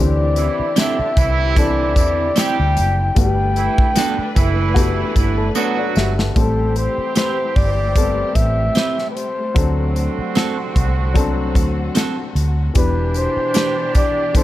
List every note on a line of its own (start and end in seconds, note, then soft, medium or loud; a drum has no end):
0.00 0.48 D2 loud
0.00 3.13 D3 medium
0.00 1.03 E3 medium
0.00 1.04 C4 medium
0.00 3.13 C4 medium
0.00 0.17 C#4 medium
0.00 1.04 D4 medium
0.00 3.13 E4 medium
0.00 1.05 G4 medium
0.00 3.13 G4 medium
0.00 0.17 A4 medium
0.00 0.80 D5 medium
0.36 0.69 E3 medium
0.36 0.69 E4 medium
0.36 closed hi-hat medium
0.59 muted fingered electric bass stroke soft
0.76 1.09 D3 medium
0.76 0.97 C4 medium
0.76 1.09 D4 medium
0.76 0.98 E4 medium
0.76 0.98 G4 medium
0.76 1.57 E5 medium
0.76 snare loud
0.76 closed hi-hat medium
0.76 tambourine medium
0.99 muted fingered electric bass stroke soft
1.17 1.96 C2 medium
1.17 1.93 E3 loud
1.17 1.92 E4 loud
1.17 kick loud
1.17 closed hi-hat medium
1.17 tambourine medium
1.56 2.63 E3 medium
1.56 2.63 C4 medium
1.56 2.64 D4 medium
1.56 2.64 A4 medium
1.56 2.40 D5 medium
1.56 kick loud
1.56 closed hi-hat medium
1.56 tambourine soft
1.96 2.29 E2 medium
1.96 2.28 E3 medium
1.96 2.28 E4 medium
1.96 kick medium
1.96 closed hi-hat medium
1.96 tambourine medium
2.36 2.94 G3 medium
2.36 2.57 C4 medium
2.36 2.57 E4 medium
2.36 2.94 G4 loud
2.36 2.58 G4 medium
2.36 3.17 G5 loud
2.36 snare loud
2.36 closed hi-hat medium
2.36 tambourine medium
2.60 2.78 D2 medium
2.77 3.10 F#1 medium
2.77 closed hi-hat medium
2.77 tambourine medium
3.15 3.67 G1 medium
3.15 4.23 G3 medium
3.15 4.23 A3 medium
3.15 6.33 A3 medium
3.15 4.24 B3 medium
3.15 6.33 D4 medium
3.15 3.24 F#4 medium
3.15 6.33 A4 medium
3.15 6.33 B4 medium
3.15 kick loud
3.15 closed hi-hat medium
3.15 tambourine medium
3.19 4.74 G5 loud
3.25 4.27 G4 medium
3.56 3.88 E3 medium
3.56 3.88 E4 medium
3.56 closed hi-hat medium
3.78 muted fingered electric bass stroke soft
3.78 kick loud
3.96 4.28 D3 medium
3.96 4.17 B3 medium
3.96 4.28 D4 medium
3.96 4.17 F#4 medium
3.96 4.18 A4 medium
3.96 snare loud
3.96 closed hi-hat medium
3.96 tambourine medium
4.18 muted fingered electric bass stroke soft
4.36 5.02 F#1 medium
4.36 5.12 E3 loud
4.36 5.12 E4 loud
4.36 kick loud
4.36 closed hi-hat medium
4.36 tambourine medium
4.74 5.83 A3 medium
4.74 5.83 B3 medium
4.74 5.77 F#4 medium
4.74 5.17 G4 medium
4.74 kick medium
4.74 closed hi-hat medium
4.74 tambourine soft
5.15 5.49 G1 medium
5.15 5.47 E3 medium
5.15 5.47 E4 medium
5.15 kick medium
5.15 closed hi-hat medium
5.15 tambourine soft
5.38 5.55 A4 medium
5.55 6.13 F#3 medium
5.55 5.76 B3 medium
5.55 5.77 D4 medium
5.55 6.13 F#4 loud
5.55 5.77 F#4 medium
5.55 5.77 A4 medium
5.55 5.77 B4 medium
5.55 tambourine medium
5.77 5.96 F#4 medium
5.77 5.95 D5 medium
5.96 6.29 G1 medium
5.96 6.17 G4 medium
5.96 6.17 E5 medium
5.96 snare medium
5.96 tambourine soft
6.18 6.36 A4 medium
6.18 6.56 F#5 medium
6.18 snare medium
6.34 6.87 A1 medium
6.34 12.72 C3 medium
6.34 9.12 E3 medium
6.34 7.42 G3 medium
6.34 7.43 A3 medium
6.34 12.72 A3 medium
6.34 9.12 C4 medium
6.34 7.43 C4 medium
6.34 9.12 G4 medium
6.34 9.53 G4 medium
6.34 7.44 A4 medium
6.34 kick loud
6.34 closed hi-hat medium
6.39 6.78 A4 medium
6.76 7.16 C5 medium
6.76 closed hi-hat medium
6.98 muted fingered electric bass stroke soft
7.16 7.37 C4 medium
7.16 7.37 G4 medium
7.16 7.37 B4 medium
7.16 7.58 C5 medium
7.16 snare loud
7.16 closed hi-hat medium
7.56 8.22 G1 medium
7.56 8.37 D5 loud
7.56 kick loud
7.56 open hi-hat medium
7.95 9.02 G3 medium
7.95 9.03 B3 medium
7.95 9.04 C4 medium
7.95 9.04 A4 medium
7.95 kick medium
7.95 closed hi-hat medium
8.35 8.69 A1 medium
8.35 9.09 E5 loud
8.35 kick medium
8.35 closed hi-hat medium
8.75 8.96 C4 medium
8.75 8.97 G4 medium
8.75 8.97 B4 medium
8.75 snare medium
8.75 closed hi-hat medium
8.99 snare soft
9.11 9.17 B4 medium
9.16 9.96 C5 medium
9.16 closed hi-hat medium
9.54 10.07 D2 loud
9.54 12.32 D3 medium
9.54 12.73 D3 medium
9.54 10.62 F#3 medium
9.54 10.63 C4 medium
9.54 12.32 C4 medium
9.54 10.63 D4 medium
9.54 12.32 F#4 medium
9.54 12.73 F#4 medium
9.54 10.64 A4 medium
9.54 kick loud
9.54 closed hi-hat medium
9.96 closed hi-hat medium
10.18 muted fingered electric bass stroke soft
10.35 10.56 C4 medium
10.35 10.57 F#4 medium
10.35 10.57 A4 medium
10.35 snare loud
10.35 closed hi-hat medium
10.76 11.55 C2 medium
10.76 kick medium
10.76 closed hi-hat medium
11.14 12.22 F#3 medium
11.14 12.22 C4 medium
11.14 12.23 D4 medium
11.14 12.23 A4 medium
11.14 kick medium
11.14 closed hi-hat medium
11.55 11.88 D2 medium
11.55 kick medium
11.55 closed hi-hat medium
11.95 12.16 C4 medium
11.95 12.16 F#4 medium
11.95 12.17 A4 medium
11.95 snare loud
11.95 closed hi-hat medium
12.35 12.69 D2 medium
12.35 closed hi-hat medium
12.74 13.27 E1 loud
12.74 13.82 B2 medium
12.74 14.43 B2 medium
12.74 13.82 E3 medium
12.74 14.43 E3 medium
12.74 14.43 D4 medium
12.74 13.82 D4 medium
12.74 14.43 G4 medium
12.74 13.83 G4 medium
12.74 kick loud
12.74 closed hi-hat medium
12.74 tambourine medium
12.78 13.19 B4 loud
13.14 13.95 C5 loud
13.14 closed hi-hat medium
13.14 tambourine soft
13.37 muted fingered electric bass stroke soft
13.54 13.76 D4 medium
13.54 13.76 G4 medium
13.54 13.77 B4 medium
13.54 snare loud
13.54 closed hi-hat medium
13.54 tambourine medium
13.95 14.33 D5 loud
13.95 kick loud
13.95 closed hi-hat medium
13.95 tambourine soft
14.33 14.43 B2 medium
14.33 14.43 E3 medium
14.33 14.43 D4 medium
14.33 14.43 A4 medium
14.33 14.43 C5 medium
14.33 kick loud
14.33 closed hi-hat medium